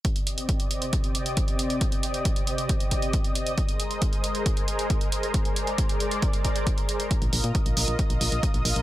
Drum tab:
HH |xxxxxxxxxxxxxxxx|xxxxxxxxxxxxxxxx|xxxxxxxxxxxxxxxx|xxxxxxxxxxxxxxxx|
BD |o---o---o---o---|o---o---o-o-o---|o---o---o---o---|o---o---o-o-o---|

HH |xxoxxxoxxxoxxxox|
BD |o---o---o---o---|